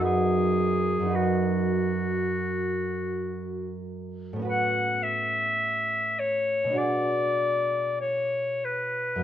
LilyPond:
<<
  \new Staff \with { instrumentName = "Clarinet" } { \time 4/4 \key b \dorian \tempo 4 = 54 gis'4 fis'2~ fis'8 r8 | fis''8 e''4 cis''8 d''4 cis''8 b'8 | }
  \new Staff \with { instrumentName = "Harp" } { \time 4/4 \key b \dorian <fis, cis' dis' fis' b'>4 <fis, cis' dis' fis' b'>2. | <a, b cis' fis' b'>2 <b, b d' fis' gis'>2 | }
>>